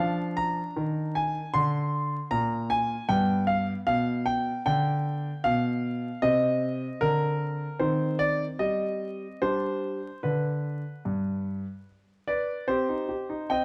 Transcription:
grand piano
Already playing: F3 D4 F5
0.37 A#5
0.76 D#3
1.15 G#5
1.54 D3 C6
2.31 A#2 A#5
2.70 G#5
3.09 G2 B3 G5
3.47 F5
3.87 B2 F5
4.26 G5
4.66 D3 G5
5.44 B2 F5
6.22 C3 C4 D#5
7.01 D3 A#4
7.79 D#3 C4 C5
8.19 D5
8.59 G3 D#5
9.42 G3 D4 G4 C5
10.23 D3 B4
11.05 G2
12.27 B4 D5
12.68 C4 G4 C5
12.89 D#4
13.09 G4
13.29 D#4
13.50 C4 D#5 G5

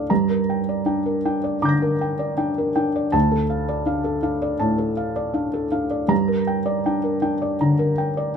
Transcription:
felt piano
Already playing: A2 D4 A4 D5 F5 A5
0.10 G2 A#5
0.29 A#4
0.50 G5
0.69 D5
0.86 D4 G5
1.06 A#4
1.25 D4 G5
1.44 D5
1.62 D3 A#5 D6 G6
1.69 A#6
1.82 A#4
2.01 G5
2.19 D5
2.38 D4 G5
2.58 A#4
2.76 D4 G5
2.96 D5
3.12 D2 A5
3.32 A4
3.50 F5
3.69 D5
3.86 D4 F5
4.04 A4
4.23 D4 F5
4.42 D5
4.60 A2 A5
4.78 A4
4.97 F5
5.16 D5
5.34 D4 F5
5.54 A4
5.72 D4 F5
5.90 D5
6.08 G2 A#5
6.28 A#4
6.47 G5
6.66 D5
6.86 D4 G5
7.04 A#4
7.22 D4 G5
7.42 D5
7.61 D3 A#5
7.79 A#4
7.98 G5
8.17 D5

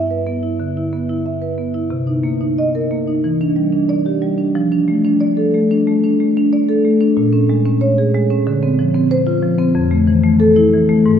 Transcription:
marimba
Already playing: G2 E5
0.11 B4
0.27 B3
0.43 E4
0.60 D3
0.77 E4
0.93 B3
1.09 E4
1.26 E5
1.42 B4
1.58 B3
1.74 E4
1.90 C3
2.07 D#4
2.23 A#3
2.41 D#4
2.58 D#5
2.75 A#4
2.91 A#3
3.08 D#4
3.24 E3
3.41 D4
3.56 G3
3.72 D4
3.89 D5
4.06 G4
4.22 G3
4.38 D4
4.55 F3
4.72 D4
4.88 A3
5.04 D4
5.21 D5
5.37 A4
5.54 A3
5.71 D4
5.87 A3
6.04 D4
6.20 A3
6.37 D4
6.53 D5
6.69 A4
6.85 A3
7.01 D4
7.17 A#2
7.33 C#4
7.50 G#3
7.66 C#4
7.81 C#5
7.98 G#4
8.15 G#3
8.30 C#4
8.47 D3
8.63 C4
8.79 F3
8.94 C4
9.11 C5
9.27 F4
9.43 F3
9.59 C4
9.75 F2
9.91 A3
10.07 E3
10.24 A3
10.40 A4
10.56 E4
10.73 E3
10.89 A3
11.06 G#2

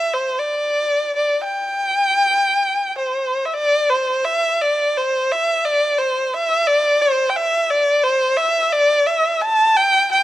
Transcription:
erhu
Already playing: E5
0.14 C5
0.39 D5
1.16 D5
1.44 G5
2.98 C5
3.45 E5
3.53 D5
3.90 C5
4.25 E5
4.61 D5
4.97 C5
5.31 E5
5.65 D5
5.98 C5
6.34 E5
6.67 D5
7.02 C5
7.29 G5
7.36 E5
7.70 D5
8.03 C5
8.37 E5
8.72 D5
9.06 E5
9.41 A5
9.77 G5
10.11 G5

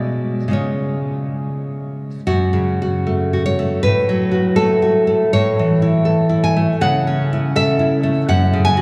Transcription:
nylon-string guitar
Already playing: B2 G#3 F#4 D5
0.48 C#3 G#3 F4
0.53 C#5
2.27 F#2 F#4
2.53 C#3
2.82 F#4
3.07 A3
3.33 F#4
3.46 C#5
3.59 A3
3.83 A2 B4
4.09 F#3
4.32 F#4
4.56 A3 A4
4.82 F#4
5.07 A3
5.33 A2 C#5
5.59 E3
5.82 E4
6.05 A4
6.29 E4
6.44 G#5
6.57 A3
6.81 C#3 F#5
7.07 C#4
7.33 E4
7.56 A4 E5
7.79 E4
8.03 A3
8.28 F#2 F#5
8.53 C#3
8.65 G#5
8.77 F#4

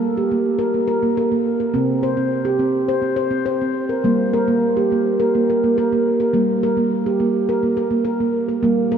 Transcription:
handpan
Already playing: G3 A#3
0.17 G4
0.32 A#3
0.59 A#4
0.74 A#3
0.88 A#4
1.03 A#3
1.17 A#4
1.32 A#3
1.60 A#4
1.74 C3 C4
2.03 C5
2.17 C4
2.45 G4
2.59 C4
2.88 C5
3.02 C4
3.16 C5
3.31 C4
3.46 C5
3.61 C4
3.89 A#4
4.04 G3 A#3
4.33 A#4
4.48 A#3
4.77 G4
4.92 A#3
5.20 A#4
5.35 A#3
5.50 A#4
5.64 A#3
5.78 A#4
5.93 A#3
6.20 A#4
6.33 G3 A#3
6.63 A#4
6.77 A#3
7.06 G4
7.20 A#3
7.49 A#4
7.63 A#3
7.77 A#4
7.91 A#3
8.05 A#4
8.20 A#3
8.49 A#4
8.63 G3 A#3
8.92 A#4

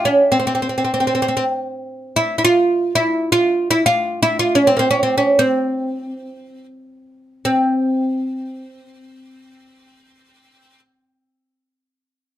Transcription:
oud
0.05 C#4
0.32 C4
0.40 C4
0.47 C4
0.55 C4
0.62 C4
0.69 C4
0.78 C4
0.85 C4
0.94 C4
1.00 C4
1.07 C4
1.15 C4
1.22 C4
1.28 C4
1.37 C4
2.16 E4
2.38 E4
2.45 F4
2.95 E4
3.32 F4
3.71 E4
3.86 F4
4.23 E4
4.39 F4
4.55 C#4
4.67 C4
4.77 A#3 C4
4.91 C#4
5.03 C4
5.18 C#4
5.39 C4
7.45 C4

